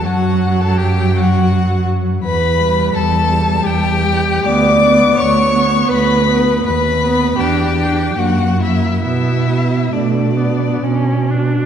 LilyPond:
<<
  \new Staff \with { instrumentName = "Violin" } { \time 3/4 \key b \minor \tempo 4 = 80 fis''8. a''16 g''8 fis''4 r8 | b''4 a''4 g''4 | d'''4 cis'''4 b''4 | b''4 g''4 fis''8 e''8 |
e''4 d''4. r8 | }
  \new Staff \with { instrumentName = "Violin" } { \time 3/4 \key b \minor fis'8. a'16 g'8 fis'4 r8 | b'4 a'4 g'4 | d''4 cis''4 b'4 | b'4 g'4 fis'8 e'8 |
e'4 d'4. r8 | }
  \new Staff \with { instrumentName = "Viola" } { \time 3/4 \key b \minor fis2. | r8 g4 g4 g8 | b8 b4 b4 b8 | r8 b8 d'8 d'8 ais8 ais8 |
b8 b8 a8 b8 cis'8 d'8 | }
  \new Staff \with { instrumentName = "Cello" } { \clef bass \time 3/4 \key b \minor fis,2. | e,4 e,4 e,4 | d,4 d,4 d,4 | dis,4 e,4 fis,4 |
b,4 b,4 b,4 | }
>>